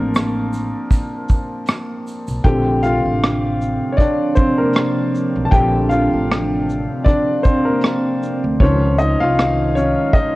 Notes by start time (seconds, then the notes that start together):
Already playing: A1 F3 A#3 C4 D4 A#4 A5 C6 D6
0.14 cross-stick, closed hi-hat, shaker
0.53 shaker
0.90 kick, closed hi-hat, shaker
1.28 kick, shaker
1.66 cross-stick, closed hi-hat, shaker
2.07 shaker
2.28 B1, shaker
2.44 A#1 C3 D3 F3 A3 C4 D4 G4 G5, kick, closed hi-hat
2.83 F4 F5, shaker
3.06 A1
3.23 cross-stick, closed hi-hat
3.62 shaker
3.92 C#5
3.97 D4 D5, kick, closed hi-hat
4.35 C4 C5, kick, shaker
4.58 A#3 A#4
4.73 cross-stick, closed hi-hat
5.15 shaker
5.36 B1
5.45 A5
5.51 A#1 D3 A3 C4 G4 G5, kick, closed hi-hat
5.89 F4 F5, shaker
6.13 A1
6.31 cross-stick, closed hi-hat
6.70 shaker
7.04 D4 D5, kick, closed hi-hat
7.43 C4 C5, kick, shaker
7.65 A#3 A#4
7.81 cross-stick, closed hi-hat
8.23 shaker
8.44 D2
8.60 C#2 D#3 F3 G#3 C#4 D#4 C5 C#5, kick, closed hi-hat
8.98 D#4 D#5, shaker
9.20 C2 F4 F5
9.39 cross-stick, closed hi-hat
9.75 C#4 C#5, shaker
10.13 D#4 D#5, kick, closed hi-hat